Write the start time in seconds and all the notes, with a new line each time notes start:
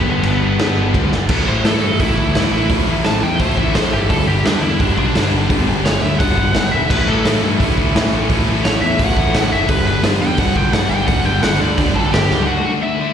Already playing: G2 D3 G3 B3 D4 B4
0.06 G1
0.23 G1, crash
0.41 G1 G2 D3 G3 B3 D4
0.59 G2 D3 G3, snare, crash
0.76 G1 G2 D3 G3
0.94 D2, kick, crash
1.12 G1, snare
1.29 A1 A2 E3 A3 C#4 E4, kick, crash
1.47 A1 A2 E3 A3 C5
1.64 A2 E3 A3 A4, snare, open hi-hat
1.82 G2 A2 E3 A3
1.99 A1 A2 E3 A3 C#4 E4, kick, open hi-hat
2.17 D2 A2 E3 A3, kick
2.35 A2 E3 A3, snare, open hi-hat
2.52 A1 A2 E3 A3 E4
2.69 A1 A2 E3 A3 C#4 E4, kick, open hi-hat
2.87 A1 A2 E3 A3
3.03 A1 A2 E3 A3 A5, snare, open hi-hat
3.21 E2 A2 E3 A3 G5
3.39 A1 A2 E3 A3 C#4 C5, kick, open hi-hat
3.43 E4
3.57 A1 A2 E3 A3 E5, kick
3.74 A1 A2 E3 A3 C5, snare, open hi-hat
3.92 G1 A2 E3 A3 G4
4.09 G1 G2 D3 G3 B3 D4 A4, kick, open hi-hat
4.27 G1 G2 D3 G3 G4
4.44 G2 D3 G3 D4, snare, open hi-hat
4.62 E2 G2 D3 G3 E4
4.80 G1 G2 D3 G3 B3 D4, kick, open hi-hat
4.97 B1 G2 D3 G3 D4, kick
5.14 G2 D3 G3, snare, open hi-hat
5.33 G1 G2 D3 G3
5.50 G1 G2 D3 G3 B3 D4, kick, open hi-hat
5.68 G1 G2 D3 G3
5.85 G1 G2 D3 G3 C#5, snare, open hi-hat
6.02 D2 G2 D3 G3 E5
6.18 G1 G2 D3 G3 F#5, kick, open hi-hat
6.23 B3 D4
6.37 G1 G2 D3 G3, kick
6.54 G1 G2 D3 G3, snare, open hi-hat
6.72 E1 G2 D3 G3 E5
6.90 A1 A2 E3 A3 C#4 E4 B4, kick, crash
7.07 A1 A2 E3 A3 A4
7.25 A2 E3 A3, snare, open hi-hat
7.42 G2 A2 E3 A3
7.59 A1 A2 E3 A3 C#4 E4, kick, open hi-hat
7.77 D2 A2 E3 A3, kick
7.93 A2 E3 A3, snare, open hi-hat
8.11 A1 A2 E3 A3
8.29 A1 A2 E3 A3 C#4 E4, kick, open hi-hat
8.47 A1 A2 E3 A3
8.64 A1 A2 E3 A3 C#5, snare, open hi-hat
8.81 E2 A2 E3 A3 E5
8.99 A1 A2 E3 A3 C#4 E4 F#5, kick, open hi-hat
9.17 A1 A2 E3 A3, kick
9.34 A1 A2 E3 A3, snare, open hi-hat
9.52 F#1 A2 E3 A3 E5
9.68 G1 G2 D3 G3 B3 D4 B4, kick, open hi-hat
9.85 G1 G2 D3 G3 B4
10.03 G2 D3 G3, snare, open hi-hat
10.20 E2 G2 D3 G3 G5
10.38 G1 G2 D3 G3 B3 D4 F#5, kick, open hi-hat
10.56 B1 G2 D3 G3 G5, kick
10.73 G2 D3 G3 F#5, snare, open hi-hat
10.90 G1 G2 D3 G3 G5
11.07 G1 G2 D3 G3 B3 F#5, kick, open hi-hat
11.12 D4
11.25 G1 G2 D3 G3 G5
11.43 G1 G2 D3 G3 F#5, snare, open hi-hat
11.60 D2 G2 D3 G3 D5
11.78 G1 G2 D3 G3 B3 D4, kick, open hi-hat
11.95 G1 G2 D3 G3 A4 A5, kick
12.12 G1 G2 D3 G3 G4 G5, snare, open hi-hat
12.30 C#2 G2 D3 G3, snare
12.47 D3 A3 D4 F#4 F#5
12.66 D3 A3 D4 F#4 F#5
12.82 D3 A3 D4 E4 E5
13.00 D3 A3 D4